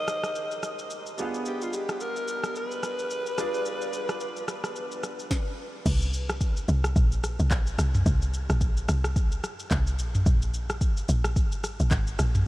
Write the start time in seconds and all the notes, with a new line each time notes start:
Already playing: G#3 D#4 G4 A#4 C5 D#5
0.08 cross-stick, shaker
0.23 cross-stick, shaker
0.35 shaker
0.51 shaker
0.63 cross-stick, shaker
0.79 shaker
0.90 shaker
1.06 shaker
1.17 G3 B3 D4 F4 G#4, shaker
1.34 shaker
1.45 G4, shaker
1.61 F4, shaker
1.73 G4, shaker
1.89 cross-stick, shaker
2.00 A#4, shaker
2.16 shaker
2.28 shaker
2.44 cross-stick, shaker
2.56 B4, shaker
2.71 shaker
2.83 cross-stick, shaker
2.99 shaker
3.10 shaker
3.26 shaker
3.37 G3 D4 F4 G#4 D5, cross-stick, shaker
3.54 shaker
3.65 shaker
3.81 shaker
3.93 shaker
4.09 cross-stick, shaker
4.20 shaker
4.36 shaker
4.48 cross-stick, shaker
4.64 cross-stick, shaker
4.76 shaker
4.92 shaker
5.03 cross-stick, shaker
5.19 shaker
5.31 kick, snare
5.86 C2, kick, crash, shaker
6.02 shaker
6.13 shaker
6.29 cross-stick, shaker
6.41 kick, shaker
6.57 shaker
6.68 C2, shaker
6.84 cross-stick, shaker
6.96 A#1, kick, shaker
7.12 shaker
7.24 cross-stick, shaker
7.39 C2, shaker
7.51 A#1, kick, clap, shaker
7.67 shaker
7.78 C2, cross-stick, shaker
7.95 mid tom, shaker
8.06 C2, kick, shaker
8.22 shaker
8.34 shaker
8.49 A#1, cross-stick, shaker
8.61 kick, shaker
8.77 shaker
8.88 C2, cross-stick, shaker
9.04 cross-stick, shaker
9.16 kick, shaker
9.32 shaker
9.44 cross-stick, shaker
9.60 shaker
9.71 C2, kick, clap, shaker
9.87 shaker
9.99 A#1, shaker
10.15 mid tom, shaker
10.26 A#1, kick, shaker
10.42 shaker
10.54 shaker
10.70 cross-stick, shaker
10.81 kick, shaker
10.97 shaker
11.09 A#1, shaker
11.24 cross-stick, shaker
11.36 G#1, kick, shaker
11.52 shaker
11.64 cross-stick, shaker
11.80 A#1, shaker
11.91 G#1, kick, clap, shaker
12.07 shaker
12.19 A#1, cross-stick, shaker
12.35 mid tom, shaker